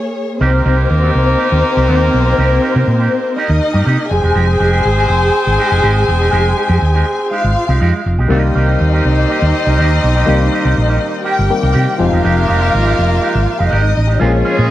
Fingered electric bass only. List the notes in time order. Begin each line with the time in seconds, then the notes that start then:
0.41 C2
0.66 C2
0.91 D#2
1.15 C2
1.52 D#2
1.77 C2
1.89 D#2
2.14 B1
2.38 C2
2.76 C3
2.88 A#2
3.49 D#2
3.74 G2
3.87 C3
4.11 F1
4.23 E1
4.36 F1
4.60 F1
4.85 G#1
5.10 F1
5.47 G#1
5.72 F1
5.83 G#1
6.08 E1
6.33 F1
6.69 F2
6.82 D#2
7.44 G#1
7.69 C2
7.81 F2
8.06 F1
8.18 B1
8.30 C2
8.56 C2
8.81 D#2
9.05 C2
9.42 D#2
9.67 C2
9.79 D#2
10.04 B1
10.28 C2
10.65 C2
10.78 A#1
11.39 G1
11.63 C2
11.76 C3
12.00 F1
12.13 E1
12.25 F1
12.49 F1
12.74 G#1
12.99 F1
13.35 G#1
13.60 F1
13.72 G#1
13.97 A1
14.22 A#1
14.59 A#2